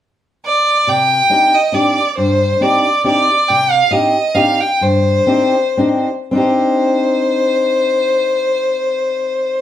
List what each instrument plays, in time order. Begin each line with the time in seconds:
0.45 fiddle D5
0.87 steel-string acoustic guitar C3, fiddle G5
1.30 steel-string acoustic guitar C4 D4 D#4 G4
1.54 fiddle D#5
1.72 steel-string acoustic guitar C4 D4 D#4 G4, fiddle D5
2.17 steel-string acoustic guitar G2, fiddle C5
2.61 steel-string acoustic guitar C4 D4 D#4 G4, fiddle D5
3.04 steel-string acoustic guitar C4 D4 D#4 G4, fiddle D5
3.48 steel-string acoustic guitar C3, fiddle G5
3.71 fiddle F5
3.91 steel-string acoustic guitar C4 D4 D#4 G4, fiddle D#5
4.34 steel-string acoustic guitar C4 D4 D#4 G4, fiddle F5
4.60 fiddle G5
4.81 steel-string acoustic guitar G2, fiddle C5
5.27 steel-string acoustic guitar C4 D4 D#4 G4
5.77 steel-string acoustic guitar C4 D4 D#4 G4
6.31 steel-string acoustic guitar C4 D4, fiddle C5
6.35 steel-string acoustic guitar D#4 G4